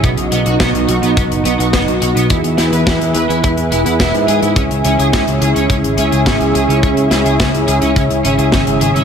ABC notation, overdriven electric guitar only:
X:1
M:4/4
L:1/16
Q:1/4=106
K:C#m
V:1 name="Overdriven electric guitar"
B, z B, F B, z F B, B, z B, F B, z F B, | E z E B E z B E E z E E E z G E | C z C G C z G C C z C G C z G C | C z C G C z G C C z C G C z G C |]